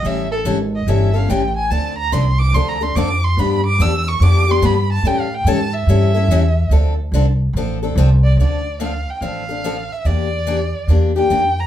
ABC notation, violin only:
X:1
M:4/4
L:1/8
Q:"Swing" 1/4=144
K:Dm
V:1 name="Violin"
e A z _e =e f g ^g | a b c' d' (3c' b c' d' c' | =b d' e' ^c' d' =c' b a | (3g f g a e4- e |
z6 z d | d2 f g f3 e | d4 z g2 b |]